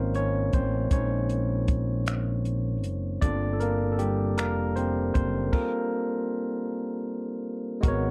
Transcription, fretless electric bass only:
0.00 0.49 G#1 medium
0.54 0.88 A1 medium
0.92 2.85 A#1 medium
2.85 3.19 F#1 medium
3.22 4.39 G1 medium
4.39 5.11 F1 medium
5.16 5.50 F#1 medium
7.84 8.11 G#1 medium

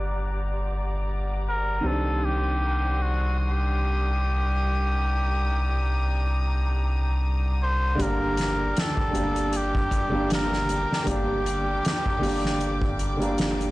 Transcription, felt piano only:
0.00 1.78 D3 medium
0.00 1.79 G3 medium
0.00 1.81 A#3 medium
0.00 1.82 D4 medium
1.81 7.94 D#3 medium
1.81 7.95 G3 medium
1.86 7.96 C4 medium
1.86 7.97 D4 medium
7.95 9.09 D3 medium
7.95 9.10 G3 medium
8.00 9.11 A#3 medium
8.00 9.13 D4 medium
9.11 10.07 D3 medium
9.11 10.08 G3 medium
9.16 10.09 A#3 medium
9.16 10.10 D4 medium
10.09 11.01 D3 medium
10.09 11.02 G3 medium
10.14 11.04 A#3 medium
10.14 11.05 D4 medium
11.03 12.17 D3 medium
11.03 12.18 G3 medium
11.08 12.19 A#3 medium
11.08 12.21 D4 loud
12.19 13.15 D3 medium
12.19 13.16 G3 medium
12.24 13.17 A#3 medium
12.24 13.19 D4 medium
13.17 13.71 D3 medium
13.17 13.71 G3 medium
13.22 13.71 A#3 medium
13.22 13.71 D4 loud

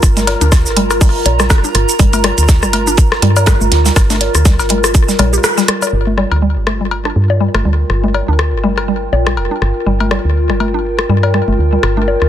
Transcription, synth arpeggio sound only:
0.17 0.20 G3 medium
0.41 0.44 D4 medium
0.76 0.80 G3 loud
1.01 1.05 G3 medium
1.40 1.43 G3 medium
1.64 1.67 D4 medium
1.99 2.03 G3 loud
2.24 2.28 G3 medium
2.63 2.65 G3 medium
2.87 2.90 D4 medium
3.22 3.26 G3 loud
3.47 3.51 G3 medium
3.86 3.88 G3 medium
4.10 4.13 D4 medium
4.45 4.49 G3 medium
4.70 4.74 G3 medium
5.08 5.11 G3 medium
5.19 5.23 G3 loud
5.33 5.36 G4 medium
5.58 5.60 G3 loud
5.68 5.71 G3 medium
6.17 6.21 G3 loud
6.42 6.46 G3 medium
6.81 6.84 G3 medium
7.05 7.08 D4 medium
7.40 7.44 G3 medium
7.65 7.69 G3 medium
8.04 8.06 G3 medium
8.28 8.31 D4 medium
8.64 8.67 G3 loud
8.88 8.92 G3 medium
9.27 9.29 G3 medium
9.51 9.54 D4 medium
9.86 9.90 G3 loud
10.11 10.15 G3 medium
10.50 10.52 G3 medium
10.74 10.77 D4 medium
11.10 11.13 G3 loud
11.34 11.38 G3 medium
11.73 11.75 G3 medium
11.97 12.00 D4 medium

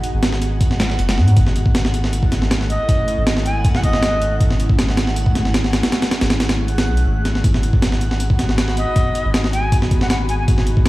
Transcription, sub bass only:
0.14 0.98 G#1 medium
0.99 1.19 F#1 medium
1.18 1.35 G#2 loud
1.37 2.78 G#1 medium
3.18 4.39 G#1 medium
4.41 5.82 G#1 loud
6.21 6.89 G#1 medium
6.87 7.04 B1 loud
7.06 7.43 G#1 medium
7.44 8.85 G#1 loud
9.25 10.47 G#1 medium
10.48 10.89 G#1 loud

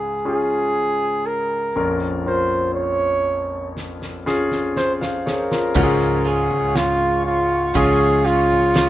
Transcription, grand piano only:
0.00 1.71 C#2 soft
0.00 1.71 G#2 soft
0.00 0.15 C#4 medium
0.00 0.15 F4 soft
0.00 0.15 G#4 medium
0.25 1.68 C#4 medium
0.25 1.68 F4 soft
0.25 1.68 G#4 medium
1.76 5.72 A#1 soft
1.76 5.72 F2 soft
1.76 2.23 C#4 medium
1.76 2.23 F4 soft
1.76 2.24 A#4 medium
2.26 4.16 C#4 soft
2.26 4.16 F4 soft
2.26 4.16 A#4 medium
4.26 5.68 C#4 medium
4.26 4.76 F4 medium
4.26 4.76 G#4 medium
5.01 5.25 C5 soft
5.01 5.25 F5 medium
5.26 5.50 G#4 soft
5.26 5.50 C#5 soft
5.51 5.75 F4 soft
5.51 5.98 A#4 soft
5.75 7.22 G#2 medium
5.75 7.65 C#4 medium
5.75 7.66 F4 medium
5.75 5.82 F#4 medium
5.83 7.69 G#4 medium
7.75 8.89 C#4 medium
7.75 8.89 F4 medium
7.75 8.89 G#4 medium

